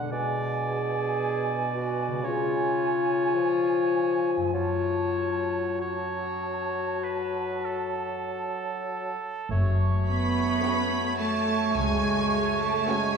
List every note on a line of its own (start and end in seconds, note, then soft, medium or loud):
0.00 2.20 B2 soft
0.00 2.11 G#3 soft
0.00 2.25 D4 soft
0.00 0.12 F#4 soft
0.00 0.14 A4 soft
0.00 0.12 F#5 soft
0.08 2.25 B2 medium
0.08 2.20 G#4 soft
0.08 2.26 D5 soft
0.08 2.20 G#5 soft
0.67 1.68 G#4 medium
1.73 2.24 F#4 medium
2.07 4.51 C#3 soft
2.12 4.53 G#3 soft
2.17 4.44 C#4 soft
2.21 3.36 C#3 soft
2.21 4.57 G#4 soft
2.21 4.37 C#5 soft
2.25 4.51 F4 medium
2.25 4.50 G#5 soft
3.35 4.53 F3 soft
4.37 8.27 F#2 soft
4.41 8.31 A3 soft
4.46 8.36 C#4 soft
4.50 9.13 F#3 soft
4.50 5.83 F4 soft
4.50 8.40 F#4 soft
4.54 5.79 C#5 soft
4.54 5.79 A5 soft
5.80 8.91 F#4 soft
5.80 7.05 C#5 soft
5.80 9.14 A5 soft
7.03 7.67 B4 soft
7.65 9.50 A4 soft
9.51 10.44 F#1 medium
9.51 13.17 F#2 soft
9.51 13.17 A3 soft
9.51 13.17 F#4 soft
9.51 13.17 C#5 soft
9.51 13.17 C#6 soft
9.90 11.37 A3 soft
10.08 11.16 B3 medium
10.08 11.16 B3 soft
10.08 11.16 B5 medium
10.27 11.00 F#4 soft
10.63 11.49 A3 soft
10.63 11.49 C#4 soft
10.63 11.49 F#4 soft
10.63 12.86 A4 soft
10.63 11.49 C#5 soft
11.02 12.49 F#4 soft
11.19 11.74 A3 soft
11.19 11.76 A3 soft
11.19 11.76 A5 medium
11.38 12.12 A3 soft
11.75 12.67 C#2 soft
11.75 13.17 C#3 soft
11.75 12.60 G#3 medium
11.75 12.59 G#3 soft
11.75 12.60 G#5 medium
12.50 13.17 F#4 soft
12.60 12.88 A3 soft
12.60 12.88 A5 soft
12.87 13.16 G#3 soft
12.87 13.16 G#3 medium
12.87 13.17 A3 soft
12.87 13.17 C#4 soft
12.87 13.17 F#4 soft
12.87 13.17 A4 soft
12.87 13.17 C#5 soft
12.87 13.16 G#5 medium